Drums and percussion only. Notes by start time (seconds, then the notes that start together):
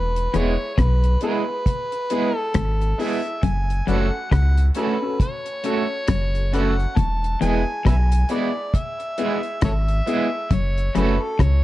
0.16 closed hi-hat
0.34 cross-stick, closed hi-hat
0.78 kick, cross-stick, closed hi-hat
1.04 closed hi-hat
1.21 closed hi-hat
1.66 kick, closed hi-hat
1.92 closed hi-hat
2.10 closed hi-hat
2.54 kick, cross-stick, closed hi-hat
2.81 closed hi-hat
3.00 open hi-hat
3.25 closed hi-hat
3.43 kick, closed hi-hat
3.70 closed hi-hat
3.88 closed hi-hat
4.32 kick, cross-stick, closed hi-hat
4.58 closed hi-hat
4.75 closed hi-hat
5.20 kick, closed hi-hat
5.46 closed hi-hat
5.64 closed hi-hat
6.08 kick, cross-stick, closed hi-hat
6.35 closed hi-hat
6.53 closed hi-hat
6.79 closed hi-hat
6.97 kick, closed hi-hat
7.24 closed hi-hat
7.42 closed hi-hat
7.86 kick, cross-stick, closed hi-hat
8.12 closed hi-hat
8.29 closed hi-hat
8.74 kick, closed hi-hat
9.00 closed hi-hat
9.18 closed hi-hat
9.43 closed hi-hat
9.61 kick, cross-stick, closed hi-hat
9.88 closed hi-hat
10.07 closed hi-hat
10.51 kick, closed hi-hat
10.78 closed hi-hat
10.95 cross-stick, closed hi-hat
11.39 kick, cross-stick, closed hi-hat